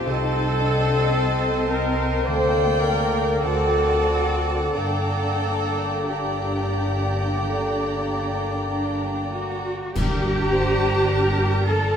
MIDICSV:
0, 0, Header, 1, 13, 480
1, 0, Start_track
1, 0, Key_signature, -2, "minor"
1, 0, Tempo, 1102941
1, 28, Time_signature, 4, 2, 24, 8
1, 988, Tempo, 1181102
1, 1468, Tempo, 1321586
1, 2908, Tempo, 1271186
1, 3868, Tempo, 1136364
1, 4716, End_track
2, 0, Start_track
2, 0, Title_t, "Violin section"
2, 0, Program_c, 0, 48
2, 30, Note_on_c, 0, 81, 58
2, 971, Note_off_c, 0, 81, 0
2, 994, Note_on_c, 0, 79, 57
2, 1468, Note_on_c, 0, 81, 51
2, 1471, Note_off_c, 0, 79, 0
2, 1942, Note_off_c, 0, 81, 0
2, 1945, Note_on_c, 0, 82, 43
2, 2424, Note_off_c, 0, 82, 0
2, 2436, Note_on_c, 0, 82, 46
2, 3776, Note_off_c, 0, 82, 0
2, 3875, Note_on_c, 0, 82, 68
2, 4716, Note_off_c, 0, 82, 0
2, 4716, End_track
3, 0, Start_track
3, 0, Title_t, "Flute section"
3, 0, Program_c, 1, 73
3, 34, Note_on_c, 1, 75, 61
3, 973, Note_off_c, 1, 75, 0
3, 997, Note_on_c, 1, 79, 52
3, 1467, Note_on_c, 1, 78, 58
3, 1472, Note_off_c, 1, 79, 0
3, 1936, Note_on_c, 1, 79, 44
3, 1941, Note_off_c, 1, 78, 0
3, 2420, Note_off_c, 1, 79, 0
3, 2435, Note_on_c, 1, 79, 38
3, 3728, Note_off_c, 1, 79, 0
3, 4716, End_track
4, 0, Start_track
4, 0, Title_t, "Violin section"
4, 0, Program_c, 2, 48
4, 29, Note_on_c, 2, 75, 51
4, 31, Note_off_c, 2, 75, 0
4, 31, Note_on_c, 2, 75, 55
4, 987, Note_on_c, 2, 74, 58
4, 989, Note_off_c, 2, 75, 0
4, 990, Note_on_c, 2, 79, 62
4, 1462, Note_off_c, 2, 74, 0
4, 1467, Note_on_c, 2, 74, 54
4, 1469, Note_off_c, 2, 79, 0
4, 1470, Note_on_c, 2, 78, 56
4, 1932, Note_off_c, 2, 74, 0
4, 1934, Note_off_c, 2, 78, 0
4, 1941, Note_on_c, 2, 74, 44
4, 1943, Note_on_c, 2, 79, 45
4, 2422, Note_off_c, 2, 74, 0
4, 2424, Note_off_c, 2, 79, 0
4, 2429, Note_on_c, 2, 79, 38
4, 2430, Note_on_c, 2, 74, 42
4, 3772, Note_off_c, 2, 79, 0
4, 3773, Note_off_c, 2, 74, 0
4, 4716, End_track
5, 0, Start_track
5, 0, Title_t, "Oboe"
5, 0, Program_c, 3, 68
5, 34, Note_on_c, 3, 72, 54
5, 982, Note_on_c, 3, 74, 59
5, 989, Note_off_c, 3, 72, 0
5, 1466, Note_off_c, 3, 74, 0
5, 1468, Note_on_c, 3, 74, 56
5, 1932, Note_off_c, 3, 74, 0
5, 1941, Note_on_c, 3, 74, 43
5, 2422, Note_off_c, 3, 74, 0
5, 2432, Note_on_c, 3, 74, 45
5, 3726, Note_off_c, 3, 74, 0
5, 4716, End_track
6, 0, Start_track
6, 0, Title_t, "Viola section"
6, 0, Program_c, 4, 48
6, 32, Note_on_c, 4, 69, 95
6, 742, Note_on_c, 4, 70, 77
6, 745, Note_off_c, 4, 69, 0
6, 982, Note_off_c, 4, 70, 0
6, 983, Note_on_c, 4, 72, 83
6, 1219, Note_on_c, 4, 70, 70
6, 1221, Note_off_c, 4, 72, 0
6, 1466, Note_off_c, 4, 70, 0
6, 1466, Note_on_c, 4, 69, 78
6, 1937, Note_off_c, 4, 69, 0
6, 1941, Note_on_c, 4, 69, 77
6, 2422, Note_off_c, 4, 69, 0
6, 2437, Note_on_c, 4, 67, 51
6, 3394, Note_off_c, 4, 67, 0
6, 3868, Note_on_c, 4, 70, 73
6, 3869, Note_on_c, 4, 62, 73
6, 4097, Note_off_c, 4, 70, 0
6, 4113, Note_on_c, 4, 72, 73
6, 4349, Note_off_c, 4, 72, 0
6, 4353, Note_on_c, 4, 70, 76
6, 4716, Note_off_c, 4, 62, 0
6, 4716, Note_off_c, 4, 70, 0
6, 4716, End_track
7, 0, Start_track
7, 0, Title_t, "Clarinet"
7, 0, Program_c, 5, 71
7, 25, Note_on_c, 5, 69, 72
7, 741, Note_on_c, 5, 70, 69
7, 747, Note_off_c, 5, 69, 0
7, 987, Note_on_c, 5, 72, 69
7, 994, Note_off_c, 5, 70, 0
7, 1219, Note_on_c, 5, 70, 61
7, 1225, Note_off_c, 5, 72, 0
7, 1468, Note_on_c, 5, 69, 66
7, 1474, Note_off_c, 5, 70, 0
7, 1822, Note_off_c, 5, 69, 0
7, 1942, Note_on_c, 5, 69, 52
7, 2418, Note_off_c, 5, 69, 0
7, 2434, Note_on_c, 5, 67, 46
7, 3377, Note_off_c, 5, 67, 0
7, 4716, End_track
8, 0, Start_track
8, 0, Title_t, "Cello section"
8, 0, Program_c, 6, 48
8, 28, Note_on_c, 6, 63, 58
8, 263, Note_off_c, 6, 63, 0
8, 271, Note_on_c, 6, 62, 56
8, 503, Note_on_c, 6, 60, 54
8, 506, Note_off_c, 6, 62, 0
8, 987, Note_off_c, 6, 60, 0
8, 991, Note_on_c, 6, 58, 53
8, 1466, Note_on_c, 6, 66, 63
8, 1469, Note_off_c, 6, 58, 0
8, 1941, Note_off_c, 6, 66, 0
8, 1942, Note_on_c, 6, 62, 50
8, 3377, Note_off_c, 6, 62, 0
8, 3391, Note_on_c, 6, 62, 60
8, 3619, Note_off_c, 6, 62, 0
8, 3633, Note_on_c, 6, 66, 67
8, 3867, Note_off_c, 6, 66, 0
8, 3871, Note_on_c, 6, 67, 104
8, 4577, Note_off_c, 6, 67, 0
8, 4593, Note_on_c, 6, 69, 87
8, 4716, Note_off_c, 6, 69, 0
8, 4716, End_track
9, 0, Start_track
9, 0, Title_t, "Harp"
9, 0, Program_c, 7, 46
9, 0, Note_on_c, 7, 45, 46
9, 0, Note_on_c, 7, 57, 43
9, 0, Note_on_c, 7, 60, 37
9, 0, Note_on_c, 7, 65, 37
9, 23, Note_on_c, 7, 48, 55
9, 48, Note_off_c, 7, 45, 0
9, 49, Note_off_c, 7, 65, 0
9, 262, Note_off_c, 7, 60, 0
9, 267, Note_on_c, 7, 60, 51
9, 500, Note_on_c, 7, 63, 45
9, 733, Note_off_c, 7, 60, 0
9, 738, Note_on_c, 7, 60, 44
9, 985, Note_on_c, 7, 50, 55
9, 1000, Note_off_c, 7, 57, 0
9, 1004, Note_off_c, 7, 48, 0
9, 1004, Note_off_c, 7, 60, 0
9, 1005, Note_off_c, 7, 63, 0
9, 1223, Note_on_c, 7, 62, 43
9, 1226, Note_on_c, 7, 67, 44
9, 1458, Note_off_c, 7, 50, 0
9, 1463, Note_on_c, 7, 50, 43
9, 1487, Note_off_c, 7, 67, 0
9, 1694, Note_off_c, 7, 62, 0
9, 1699, Note_on_c, 7, 62, 34
9, 1700, Note_on_c, 7, 66, 36
9, 1942, Note_on_c, 7, 43, 44
9, 1960, Note_off_c, 7, 50, 0
9, 1963, Note_off_c, 7, 66, 0
9, 2190, Note_on_c, 7, 58, 34
9, 2423, Note_off_c, 7, 62, 0
9, 2427, Note_on_c, 7, 62, 34
9, 2665, Note_off_c, 7, 58, 0
9, 2669, Note_on_c, 7, 58, 30
9, 2904, Note_on_c, 7, 50, 34
9, 3146, Note_off_c, 7, 58, 0
9, 3150, Note_on_c, 7, 58, 32
9, 3377, Note_off_c, 7, 43, 0
9, 3382, Note_off_c, 7, 62, 0
9, 3387, Note_on_c, 7, 62, 29
9, 3630, Note_off_c, 7, 58, 0
9, 3634, Note_on_c, 7, 58, 26
9, 3870, Note_on_c, 7, 43, 66
9, 3885, Note_off_c, 7, 50, 0
9, 3989, Note_off_c, 7, 58, 0
9, 3994, Note_on_c, 7, 58, 53
9, 4115, Note_on_c, 7, 67, 60
9, 4234, Note_on_c, 7, 74, 59
9, 4358, Note_on_c, 7, 79, 66
9, 4468, Note_off_c, 7, 74, 0
9, 4473, Note_on_c, 7, 74, 49
9, 4588, Note_off_c, 7, 67, 0
9, 4593, Note_on_c, 7, 67, 53
9, 4703, Note_off_c, 7, 62, 0
9, 4716, Note_off_c, 7, 43, 0
9, 4716, Note_off_c, 7, 58, 0
9, 4716, Note_off_c, 7, 67, 0
9, 4716, Note_off_c, 7, 74, 0
9, 4716, Note_off_c, 7, 79, 0
9, 4716, End_track
10, 0, Start_track
10, 0, Title_t, "Bassoon"
10, 0, Program_c, 8, 70
10, 29, Note_on_c, 8, 60, 56
10, 987, Note_on_c, 8, 58, 56
10, 993, Note_off_c, 8, 60, 0
10, 1466, Note_on_c, 8, 60, 49
10, 1471, Note_off_c, 8, 58, 0
10, 1943, Note_on_c, 8, 58, 44
10, 1949, Note_off_c, 8, 60, 0
10, 2425, Note_off_c, 8, 58, 0
10, 2427, Note_on_c, 8, 58, 47
10, 3724, Note_off_c, 8, 58, 0
10, 4716, End_track
11, 0, Start_track
11, 0, Title_t, "Timpani"
11, 0, Program_c, 10, 47
11, 3866, Note_on_c, 10, 43, 73
11, 4572, Note_off_c, 10, 43, 0
11, 4716, End_track
12, 0, Start_track
12, 0, Title_t, "Double bass section"
12, 0, Program_c, 11, 48
12, 30, Note_on_c, 11, 36, 62
12, 972, Note_off_c, 11, 36, 0
12, 989, Note_on_c, 11, 38, 64
12, 1462, Note_off_c, 11, 38, 0
12, 1467, Note_on_c, 11, 38, 54
12, 1932, Note_off_c, 11, 38, 0
12, 1943, Note_on_c, 11, 31, 52
12, 3790, Note_off_c, 11, 31, 0
12, 3865, Note_on_c, 11, 31, 72
12, 4716, Note_off_c, 11, 31, 0
12, 4716, End_track
13, 0, Start_track
13, 0, Title_t, "Drums"
13, 3867, Note_on_c, 9, 35, 69
13, 3867, Note_on_c, 9, 49, 72
13, 3909, Note_off_c, 9, 35, 0
13, 3909, Note_off_c, 9, 49, 0
13, 4716, End_track
0, 0, End_of_file